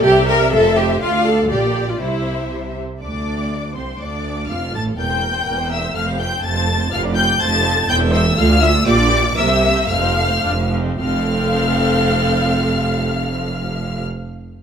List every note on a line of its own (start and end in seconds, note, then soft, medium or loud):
0.00 0.52 C2 medium
0.00 0.28 G4 loud
0.00 0.53 D5 medium
0.04 0.52 C3 medium
0.04 1.00 E5 loud
0.29 0.53 A#4 loud
0.53 1.02 F1 medium
0.53 1.02 F2 medium
0.53 0.77 A4 loud
0.53 1.02 C5 medium
0.78 1.02 G4 loud
1.02 1.48 D2 medium
1.02 1.26 F4 medium
1.02 1.48 D5 medium
1.02 1.50 F5 loud
1.26 1.51 A4 medium
1.51 2.01 A#1 medium
1.51 2.02 A#2 medium
1.51 1.88 G4 medium
1.51 2.00 D5 medium
1.51 2.01 D5 medium
1.89 2.02 F4 medium
2.00 2.81 C2 medium
2.00 2.81 C3 medium
2.00 2.51 E4 medium
2.00 2.83 C5 medium
2.00 2.76 E5 medium
3.02 3.72 D2 medium
3.02 3.72 D4 medium
3.02 3.72 D5 medium
3.02 3.73 D6 medium
3.76 4.01 C2 soft
3.76 4.01 C2 medium
3.76 4.01 C4 soft
3.76 4.01 C5 medium
3.76 4.01 C6 medium
3.99 4.48 D2 medium
3.99 4.49 D2 medium
3.99 4.49 D4 medium
3.99 4.50 D5 medium
3.99 4.50 D6 medium
4.49 4.74 F1 medium
4.49 4.74 F2 medium
4.49 4.74 F4 medium
4.49 4.75 F5 medium
4.49 4.75 F6 medium
4.73 4.98 A1 medium
4.73 4.98 A2 medium
4.73 4.99 A4 medium
4.73 4.83 A5 medium
4.73 4.83 A6 medium
4.98 5.41 E1 medium
4.98 5.41 E2 medium
4.98 5.10 A#3 soft
4.98 5.10 A#4 soft
4.98 5.70 G5 medium
4.98 5.70 G6 medium
5.10 5.23 C4 soft
5.10 5.23 C5 soft
5.22 5.35 A#3 soft
5.22 5.35 A#4 soft
5.35 5.47 C4 soft
5.35 5.47 C5 medium
5.46 5.90 E1 medium
5.46 5.89 E2 medium
5.46 5.58 A#3 medium
5.46 5.58 A#4 soft
5.58 5.71 C4 medium
5.58 5.71 C5 soft
5.70 5.83 A#3 medium
5.70 5.83 A#4 medium
5.70 5.96 E5 medium
5.70 5.96 E6 medium
5.83 5.96 C4 medium
5.83 5.95 C5 medium
5.94 6.38 F1 medium
5.94 6.38 F2 medium
5.94 6.07 A3 medium
5.94 6.06 A4 medium
5.94 6.20 F5 medium
5.94 6.03 F6 medium
6.07 6.20 C4 medium
6.07 6.20 C5 medium
6.19 6.32 A3 medium
6.19 6.32 A4 medium
6.19 6.45 G5 medium
6.19 6.44 G6 medium
6.32 6.44 C4 medium
6.32 6.44 C5 medium
6.44 6.87 F1 medium
6.44 6.87 F2 medium
6.44 6.55 A3 medium
6.44 6.55 A4 medium
6.44 6.93 A5 medium
6.44 6.92 A6 medium
6.56 6.68 C4 medium
6.56 6.68 C5 medium
6.68 6.81 A3 medium
6.68 6.80 A4 medium
6.80 6.93 C4 medium
6.80 6.93 C5 medium
6.92 7.35 F1 medium
6.92 7.35 F2 medium
6.92 7.04 F4 medium
6.92 7.04 A#4 medium
6.92 7.01 F5 loud
6.92 7.01 F6 medium
7.04 7.17 D4 medium
7.04 7.17 D5 medium
7.16 7.29 F4 medium
7.16 7.29 A#4 medium
7.16 7.41 G5 medium
7.16 7.40 G6 loud
7.28 7.41 D4 medium
7.28 7.41 D5 medium
7.40 7.84 F1 medium
7.40 7.84 F2 medium
7.40 7.52 A3 medium
7.40 7.52 C5 medium
7.40 7.89 A5 loud
7.40 7.89 A6 loud
7.52 7.65 C4 medium
7.52 7.65 A4 medium
7.64 7.77 A3 medium
7.64 7.77 C5 medium
7.76 7.89 C4 medium
7.76 7.89 A4 medium
7.88 8.32 E1 loud
7.88 8.32 E2 medium
7.88 8.00 E4 medium
7.88 8.00 C5 medium
7.88 7.98 G5 loud
7.88 7.97 G6 loud
8.00 8.13 C4 medium
8.00 8.13 E5 medium
8.13 8.25 E4 medium
8.13 8.25 C5 medium
8.13 8.22 E5 loud
8.13 8.37 E6 loud
8.25 8.38 C4 medium
8.25 8.38 E5 medium
8.37 8.81 D2 medium
8.37 8.81 D2 loud
8.37 8.48 F4 medium
8.37 8.49 A4 medium
8.37 8.62 F5 loud
8.37 8.63 F6 loud
8.49 8.62 D4 medium
8.49 8.60 F4 medium
8.61 8.73 F4 medium
8.61 8.74 A4 medium
8.61 8.70 E5 loud
8.61 8.87 E6 loud
8.74 8.87 D4 medium
8.74 8.85 F4 medium
8.86 9.31 A#1 loud
8.86 9.31 A#2 medium
8.86 8.97 F4 medium
8.86 8.98 G4 medium
8.86 9.36 D5 loud
8.86 9.36 D6 loud
8.98 9.11 D4 medium
8.98 9.10 F4 medium
9.11 9.22 F4 medium
9.11 9.24 G4 medium
9.23 9.36 D4 medium
9.23 9.36 F4 medium
9.36 9.83 C2 medium
9.36 9.83 C3 medium
9.36 9.48 A#3 medium
9.36 9.48 A#4 medium
9.36 9.89 E5 loud
9.36 9.90 E6 loud
9.49 9.63 C4 medium
9.49 9.63 C5 medium
9.62 9.76 A#3 medium
9.62 9.76 A#4 medium
9.75 9.89 C4 medium
9.75 9.89 C5 medium
9.89 10.38 F1 medium
9.89 10.38 F2 medium
9.89 10.02 A3 medium
9.89 10.02 A4 medium
9.89 10.72 F5 loud
9.89 10.73 F6 medium
10.02 10.17 C4 medium
10.02 10.17 C5 medium
10.16 10.30 A3 medium
10.16 10.30 A4 medium
10.30 10.44 C4 medium
10.30 10.44 C5 medium
10.43 10.94 F1 medium
10.43 10.94 F2 medium
10.43 10.51 D4 medium
10.72 10.98 C4 medium
10.99 14.01 F1 loud
10.99 14.00 F2 medium
10.99 14.00 C4 medium
10.99 14.00 A4 medium
10.99 14.00 F5 medium
10.99 14.01 F6 medium